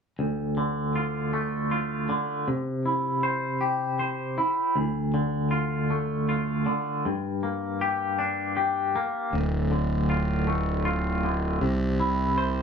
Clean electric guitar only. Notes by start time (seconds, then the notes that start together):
0.19 D2
0.57 D3
0.96 F4
1.33 A3
1.71 F4
2.09 D3
2.48 C3
2.86 E4
3.23 C5
3.61 G4
3.99 C5
4.38 E4
4.76 D2
5.14 D3
5.51 F4
5.90 A3
6.29 F4
6.66 D3
7.05 G2
7.43 A#3
7.81 G4
8.19 D4
8.57 G4
8.95 A#3
9.33 D2
9.71 D3
10.10 F4
10.47 A3
10.85 F4
11.24 D3
11.61 C3
12.00 E4
12.38 C5